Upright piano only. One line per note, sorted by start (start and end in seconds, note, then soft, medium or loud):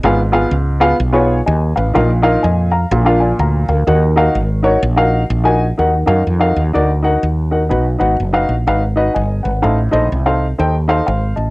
0.04 0.77 G#2 medium
0.04 0.18 B3 medium
0.04 0.19 F4 medium
0.04 0.19 G#4 medium
0.04 0.19 F5 medium
0.32 0.52 B3 medium
0.32 0.52 F4 medium
0.32 0.52 G#4 medium
0.32 0.52 F5 medium
0.80 0.95 B3 medium
0.80 0.95 F4 medium
0.80 0.95 G#4 medium
0.80 0.95 F5 loud
1.12 1.37 B3 medium
1.12 1.38 F4 medium
1.12 1.38 G#4 medium
1.12 1.38 C#5 medium
1.46 1.74 D#5 medium
1.46 1.74 G#5 medium
1.76 2.22 B4 medium
1.76 1.94 F5 medium
1.94 2.68 A#2 medium
1.94 2.09 D#4 medium
1.94 2.10 F4 medium
1.94 2.10 A#4 medium
1.94 2.10 F5 medium
2.22 2.43 D#4 medium
2.22 2.43 F4 medium
2.22 2.43 A#4 medium
2.22 2.43 F5 medium
2.43 2.71 D#5 medium
2.43 2.71 G#5 medium
2.71 3.05 F5 medium
2.71 3.17 A#5 medium
2.92 3.64 A#2 medium
3.05 3.29 D4 medium
3.05 3.30 F4 medium
3.05 3.20 A#4 medium
3.05 3.20 F5 medium
3.20 3.38 D5 medium
3.20 3.38 G#5 medium
3.39 3.67 F5 medium
3.39 3.67 A#5 medium
3.69 3.86 A#4 medium
3.69 4.14 F5 medium
3.87 4.60 D#3 medium
3.87 4.02 D#4 medium
3.87 4.02 F#4 medium
3.87 4.02 A#4 medium
3.87 4.02 F#5 medium
4.16 4.35 D#4 medium
4.16 4.35 F#4 medium
4.16 4.36 A#4 medium
4.16 4.36 F5 medium
4.63 4.78 D#4 medium
4.63 4.78 F#4 medium
4.63 4.78 A#4 medium
4.63 4.78 C#5 medium
4.96 5.21 D#4 medium
4.96 5.21 F#4 medium
4.96 5.22 A#4 medium
4.96 5.22 F5 medium
5.44 5.64 D#4 medium
5.44 5.64 F#4 medium
5.44 5.64 A#4 medium
5.44 5.65 G#5 medium
5.78 6.52 D#3 medium
5.78 5.93 D#4 medium
5.78 5.93 F#4 medium
5.78 5.93 A#4 medium
5.78 5.94 F#5 medium
6.06 6.21 D#4 medium
6.06 6.22 F#4 medium
6.06 6.22 A#4 medium
6.06 6.22 F5 medium
6.39 6.60 D#4 medium
6.39 6.60 F#4 medium
6.39 6.60 A#4 medium
6.39 6.60 F5 medium
6.73 6.89 D#4 medium
6.73 6.89 F#4 medium
6.73 6.89 A#4 medium
6.73 6.89 D5 medium
7.03 7.23 D#4 medium
7.03 7.23 F#4 medium
7.03 7.23 A#4 medium
7.03 7.23 F#5 medium
7.51 7.61 D#4 medium
7.51 7.61 F#4 medium
7.51 7.61 A#4 medium
7.51 7.62 F#5 medium
7.69 8.44 B2 medium
7.69 7.85 D#4 medium
7.69 7.85 F#4 medium
7.69 7.85 B4 medium
7.69 7.85 F#5 medium
7.99 8.14 D#4 medium
7.99 8.14 F#4 medium
7.99 8.14 B4 medium
7.99 8.14 F#5 medium
8.33 8.53 D#4 medium
8.33 8.53 F#4 medium
8.33 8.53 B4 medium
8.33 8.53 F5 medium
8.67 8.82 D#4 medium
8.67 8.82 F#4 medium
8.67 8.82 B4 medium
8.67 8.82 F5 medium
8.96 9.15 D#4 medium
8.96 9.16 F#4 medium
8.96 9.15 B4 medium
8.96 9.13 D#5 medium
9.14 9.43 D#5 medium
9.14 9.42 G#5 medium
9.43 9.90 B4 soft
9.43 9.89 F#5 medium
9.62 10.36 A2 medium
9.62 9.77 D#4 medium
9.62 9.77 A4 medium
9.62 9.78 C5 medium
9.62 9.78 F5 medium
9.91 10.06 D#4 medium
9.91 10.06 A4 medium
9.91 10.07 C5 medium
9.91 10.07 D#5 medium
10.26 10.45 D#4 medium
10.26 10.45 A4 medium
10.26 10.45 C5 medium
10.26 10.45 F5 medium
10.58 10.74 D#4 medium
10.58 10.74 A4 medium
10.58 10.74 C5 medium
10.58 10.74 G5 medium
10.88 11.07 D#4 medium
10.88 11.08 A4 medium
10.88 11.06 C5 medium
10.88 11.05 F5 medium
11.07 11.35 C5 soft
11.07 11.35 F5 medium
11.36 11.50 D#5 soft
11.36 11.50 A5 medium